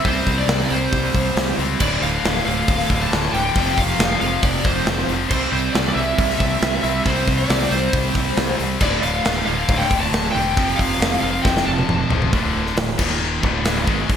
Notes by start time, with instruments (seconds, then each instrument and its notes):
0.05 fingered electric bass C2, distorted electric guitar C3 G3 C4, lead electric guitar C5, kick, open hi-hat
0.27 fingered electric bass C2, kick, open hi-hat
0.38 lead electric guitar D5
0.48 fingered electric bass C2, snare, open hi-hat
0.60 snare
0.70 fingered electric bass C2, distorted electric guitar C3 G3 C4, lead electric guitar C5, open hi-hat
0.92 fingered electric bass C2, kick, open hi-hat
1.14 fingered electric bass C2, kick, open hi-hat
1.36 fingered electric bass C2, snare, open hi-hat
1.58 fingered electric bass C#2, distorted electric guitar G3 C4, open hi-hat
1.63 distorted electric guitar C3
1.80 fingered electric bass D1, distorted electric guitar D2 A2 D3, lead electric guitar D5, kick, crash
2.02 fingered electric bass D1, lead electric guitar F5, open hi-hat
2.24 fingered electric bass D1, snare, open hi-hat
2.36 snare
2.46 fingered electric bass D1, distorted electric guitar D2 A2 D3, lead electric guitar F5, open hi-hat
2.68 fingered electric bass D1, kick, open hi-hat
2.80 snare
2.90 fingered electric bass D1, kick, open hi-hat
3.02 lead electric guitar A5
3.12 fingered electric bass D1, snare, open hi-hat
3.33 fingered electric bass D1, distorted electric guitar A2 D3, lead electric guitar G5, open hi-hat
3.38 distorted electric guitar D2
3.54 fingered electric bass F1, distorted electric guitar F2 C3, kick, open hi-hat
3.58 distorted electric guitar F3
3.77 fingered electric bass F1, lead electric guitar F5, kick, open hi-hat
3.99 fingered electric bass F1, snare, open hi-hat
4.20 fingered electric bass F1, distorted electric guitar F2 C3 F3, lead electric guitar F5, open hi-hat
4.43 fingered electric bass F1, lead electric guitar D5, kick, open hi-hat
4.64 fingered electric bass F1, lead electric guitar C5, kick, open hi-hat
4.86 fingered electric bass F1, snare, open hi-hat
5.08 fingered electric bass F1, distorted electric guitar C3 F3, open hi-hat
5.12 distorted electric guitar F2
5.28 fingered electric bass C2, distorted electric guitar C3 G3, lead electric guitar C5, kick, crash
5.33 distorted electric guitar C4
5.52 fingered electric bass C2, lead electric guitar C5, open hi-hat
5.73 fingered electric bass C2, lead electric guitar D5, snare, open hi-hat
5.87 lead electric guitar D5, snare
5.94 fingered electric bass C2, distorted electric guitar G3 C4, lead electric guitar E5, open hi-hat
6.00 distorted electric guitar C3
6.18 fingered electric bass C2, kick, open hi-hat
6.30 snare
6.38 fingered electric bass C2, lead electric guitar E5, kick, open hi-hat
6.62 fingered electric bass C2, snare, open hi-hat
6.82 fingered electric bass C2, distorted electric guitar G3 C4, lead electric guitar E5, open hi-hat
6.86 distorted electric guitar C3
7.03 fingered electric bass C2, distorted electric guitar C3, lead electric guitar C5, kick, open hi-hat
7.08 distorted electric guitar G3 C4
7.27 fingered electric bass C2, kick, open hi-hat
7.37 lead electric guitar D5
7.49 fingered electric bass C2, snare, open hi-hat
7.62 snare
7.69 fingered electric bass C2, distorted electric guitar G3 C4, lead electric guitar C5, open hi-hat
7.74 distorted electric guitar C3
7.93 fingered electric bass C2, kick, open hi-hat
8.15 fingered electric bass C2, kick, open hi-hat
8.37 fingered electric bass C2, snare, open hi-hat
8.58 fingered electric bass C2, distorted electric guitar C3 G3 C4, open hi-hat
8.79 fingered electric bass D1, distorted electric guitar D2 A2 D3, lead electric guitar D5, kick, crash
9.02 fingered electric bass D1, lead electric guitar F5, open hi-hat
9.25 fingered electric bass D1, snare, open hi-hat
9.45 fingered electric bass D1, distorted electric guitar D2 A2 D3, lead electric guitar F5, open hi-hat
9.68 fingered electric bass D1, kick, open hi-hat
9.77 lead electric guitar G5, snare
9.91 fingered electric bass D1, kick, open hi-hat
10.00 lead electric guitar A5
10.12 fingered electric bass D1, snare, open hi-hat
10.31 fingered electric bass E1, distorted electric guitar D3, lead electric guitar G5
10.36 distorted electric guitar D2 A2, open hi-hat
10.55 fingered electric bass F1, distorted electric guitar F2 C3, kick, open hi-hat
10.59 distorted electric guitar F3
10.75 fingered electric bass F1, lead electric guitar F5, kick
10.80 open hi-hat
10.99 fingered electric bass F1, snare, open hi-hat
11.14 snare
11.20 fingered electric bass F1, distorted electric guitar C3 F3, lead electric guitar F5, open hi-hat
11.25 distorted electric guitar F2
11.42 fingered electric bass F1, lead electric guitar G5, kick
11.46 snare
11.57 snare
11.66 fingered electric bass F1, lead electric guitar A5
11.78 high tom
11.88 fingered electric bass F1, mid tom
12.10 fingered electric bass E1, distorted electric guitar F2 C3 F3, floor tom
12.22 floor tom
12.32 fingered electric bass D1, distorted electric guitar D2 A2 D3, kick, open hi-hat
12.66 snare
12.76 fingered electric bass D1, distorted electric guitar D2 A2, snare, open hi-hat
12.98 fingered electric bass D#1, distorted electric guitar D#2 A#2 D#3, kick, crash
13.41 fingered electric bass D1, distorted electric guitar D2 A2 D3, kick
13.65 snare, open hi-hat
13.85 fingered electric bass G#1, distorted electric guitar G#2 D#3 G#3, kick
14.09 muted distorted electric guitar stroke, muted overdriven electric guitar stroke, kick, open hi-hat